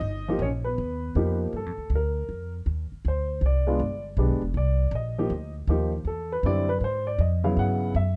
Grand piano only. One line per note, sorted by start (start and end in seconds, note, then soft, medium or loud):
0.00 0.28 D#4 medium
0.00 0.43 D#5 loud
0.28 0.40 F3 medium
0.28 0.40 A#3 medium
0.28 0.40 D#4 medium
0.28 0.40 G4 medium
0.42 0.49 C#4 medium
0.42 0.47 C#5 medium
0.64 1.37 B3 medium
0.64 1.36 B4 medium
1.16 1.54 F3 medium
1.16 1.54 A#3 medium
1.16 1.54 D#4 medium
1.16 1.54 G4 medium
1.56 1.90 A4 medium
1.95 2.52 A#4 medium
3.08 3.42 C5 medium
3.46 4.02 D5 medium
3.67 3.79 G#3 medium
3.67 3.79 B3 medium
3.67 3.79 D4 medium
3.67 3.79 F4 medium
4.18 4.40 G#3 medium
4.18 4.40 B3 medium
4.18 4.40 D4 medium
4.18 4.40 G4 medium
4.57 4.91 D5 medium
4.95 5.52 D#5 medium
5.18 5.30 F3 medium
5.18 5.30 A#3 medium
5.18 5.30 D#4 medium
5.18 5.30 G4 medium
5.69 5.91 F3 medium
5.69 5.91 A#3 medium
5.69 5.91 D#4 medium
5.69 5.91 G4 medium
6.07 6.30 A4 medium
6.32 6.44 B4 medium
6.44 6.66 D3 medium
6.44 6.66 G3 medium
6.44 6.66 C4 medium
6.44 6.67 E4 medium
6.44 6.69 D5 medium
6.69 6.77 B4 medium
6.78 6.81 B4 soft
6.84 7.06 C5 medium
7.07 7.19 D5 medium
7.21 7.44 D#5 medium
7.44 7.92 C#3 medium
7.44 7.92 F#3 medium
7.44 7.92 B3 medium
7.44 7.92 E4 medium
7.44 7.57 F5 medium
7.59 7.93 F#5 medium
7.96 8.16 E5 medium